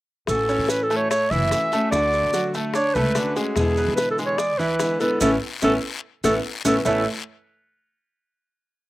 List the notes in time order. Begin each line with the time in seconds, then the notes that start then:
0.27 A1 E3 A3 C#4 F#4 A4, high bongo, long guiro, maracas
0.49 C#4 C#5, maracas
0.58 A2
0.69 B4, high bongo, short guiro, maracas
0.83 A4
0.90 A3 A4, high bongo, short guiro, maracas
0.96 C#5
1.10 C#5, muted steel-string acoustic guitar stroke, high bongo, long guiro, maracas
1.31 F#1 E3 E4 E5, high bongo, maracas
1.51 E3 A3 C#4 F#4, high bongo, low bongo, short guiro, maracas
1.71 A3 C#4 F#4 A4, high bongo, short guiro, maracas
1.91 D2 D3 A3 F#4 D5, high bongo, long guiro, maracas
2.13 high bongo, maracas
2.23 D3
2.33 F#3 F#4, high bongo, short guiro, maracas
2.54 A3 A4, high bongo, short guiro, maracas
2.74 D4 C#5 D5, muted steel-string acoustic guitar stroke, high bongo, long guiro, maracas
2.94 C#2 A3 A4 B4, maracas
3.15 D3 A3 C#4 D4 F#4, high bongo, low bongo, short guiro, maracas
3.36 G#3 A3 C#4 F#4 G#4, high bongo, short guiro, maracas
3.56 E2 B2 D3 G#3 B3 E4 G#4, high bongo, long guiro, maracas
3.77 B3 B4, maracas
3.88 E3
3.96 B4, high bongo, short guiro, maracas
4.11 A4
4.18 G#3 G#4, high bongo, short guiro, maracas
4.26 C#5
4.38 D5, muted steel-string acoustic guitar stroke, high bongo, long guiro, maracas
4.58 D2 E3 E4 B4, high bongo, maracas
4.80 D3 G#3 B3 E4, high bongo, low bongo, short guiro, maracas
5.00 D3 G#3 B3 E4 A4 B4, high bongo, short guiro, maracas
5.21 A1 A3 B3 C#4 E4 A4, high bongo, long guiro, maracas
5.62 A1 A3 B3 C#4 E4 A4, high bongo, long guiro, maracas
6.24 A1 A3 B3 C#4 E4 A4, high bongo, long guiro, maracas
6.65 A1 A3 B3 C#4 E4 A4, high bongo, maracas
6.85 A1 A2 E3 A3 B3 C#4 E4 A4 B4 C#5 E5, low bongo, long guiro, maracas